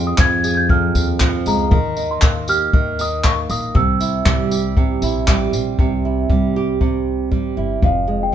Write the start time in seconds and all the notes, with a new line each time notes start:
Already playing: F2 F3 G#3 C4 G#4
0.07 D#6
0.18 F2 F3 G#6, kick, clap
0.44 G#4, tambourine
0.55 G6 G#6
0.69 F2 F6, kick
0.95 D#2 C4, tambourine
1.20 F3, kick, clap
1.46 C#2 G#3 A#5, tambourine
1.71 D#2 D#3, kick
1.97 D#4, tambourine
2.11 C6
2.22 D#2 A#3, kick, clap
2.48 G4 F6, tambourine
2.73 D#2 D#3, kick
2.99 D#4 D#6, tambourine
3.24 A#3 C#6, kick, clap
3.49 A#1 A#3 D#6, tambourine
3.75 C2 C3 E6, kick
4.00 E4, tambourine
4.25 C2 G3, kick, clap
4.51 G4, tambourine
4.77 C3, kick
5.02 A#1 E4, tambourine
5.27 G3, kick, clap
5.53 A#1 C4, tambourine
5.79 C2 C3, kick
6.05 E4
6.30 C2 G3, kick
6.56 G4
6.81 C3, kick
7.31 G3, kick
7.57 G1 E4
7.82 F1 F2 F5, kick
8.08 G#3
8.23 G5